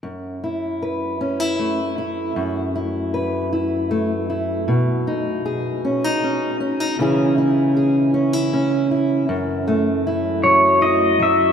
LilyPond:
<<
  \new Staff \with { instrumentName = "Pedal steel guitar" } { \time 3/4 \key fis \dorian \tempo 4 = 78 r2. | r2. | r2. | r2. |
r4. cis''8 dis''8 e''8 | }
  \new Staff \with { instrumentName = "Steel-string acoustic guitar" } { \time 3/4 \key fis \dorian << { r8 e'8 b'8 cis'16 e'16 a8 e'8 | r8 e'8 b'8 e'8 a8 e'8 | r8 dis'8 gis'8 cis'16 dis'16 cis'8 cis'16 dis'16 | <e cis' e' gis'>8 e'8 gis'8 cis'16 e'16 cis'8 e'8 |
r8 a8 e'4 e'4 | } \\ { fis,2. | fis,2. | b,2. | cis2. |
fis,4. fis4 fis8 | } >> }
>>